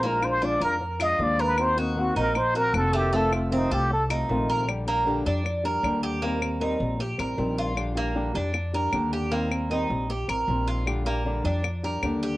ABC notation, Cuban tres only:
X:1
M:4/4
L:1/8
Q:1/4=155
K:Bb
V:1 name="Cuban tres"
B,2 D B2 F2 B- | B _G2 E2 G2 A, | A,2 C A2 E2 B | z B,2 D2 B2 G |
B,2 E2 G B2 F- | F B,2 D2 B2 G | B,2 E2 G B2 F- | F B,2 D2 B2 G |]